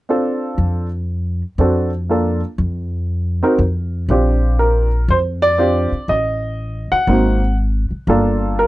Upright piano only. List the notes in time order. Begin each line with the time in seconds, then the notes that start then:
0.09 C4 D4 F4 A4
1.59 C4 D4 F#4 A4
2.09 A#3 D4 F4 A4
3.43 C4 D#4 F#4 A#4
4.10 C4 D4 F4 G4
4.59 A#4
5.10 C5
5.42 D5
5.58 C4 D4 F4 G4
6.09 D#5
6.92 F#5
7.08 A#3 C4 D#4 F#4
8.08 A#3 D4 F4 A4
8.59 A#4